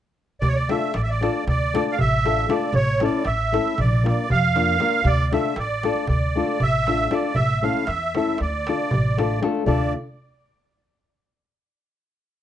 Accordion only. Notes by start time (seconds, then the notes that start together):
0.41 D5
0.48 C#5
0.55 D5
0.69 E5
0.95 D5
1.03 E5
1.10 D5
1.49 D5
1.92 F5
2.00 E5
2.50 D5
2.75 C#5
3.04 D5
3.26 E5
3.80 D5
4.07 D5
4.31 F5
5.07 D5
5.33 E5
5.59 D5
6.08 D5
6.63 E5
7.12 D5
7.35 E5
7.63 F5
7.87 E5
8.16 E5
8.41 D5
9.66 D5